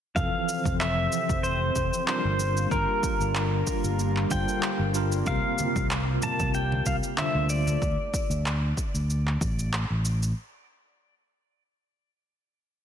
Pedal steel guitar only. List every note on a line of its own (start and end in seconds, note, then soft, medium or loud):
0.16 0.80 F5 loud
0.80 1.46 E5 medium
1.43 2.06 C5 medium
2.07 2.73 C5 medium
2.71 4.27 A#4 medium
4.31 4.91 G5 medium
5.27 5.87 F5 loud
6.23 6.54 A5 loud
6.55 6.87 G5 loud
6.87 6.95 F5 medium
7.18 7.51 E5 medium
7.50 9.69 D5 medium